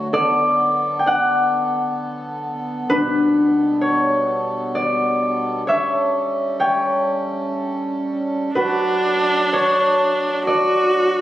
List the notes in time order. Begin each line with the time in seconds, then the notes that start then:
Already playing: D3 B4 C#5
0.11 B3 A4 D5
0.99 G5
1.06 D5 F#5
2.86 B2 G3 D4 B4
3.81 C#5
4.75 D5
5.67 C#4 A4 C#5 E5
6.60 C#5 G5
8.55 F#3 D4 F#4 A4 B4
9.53 C#5
10.45 F#4 D5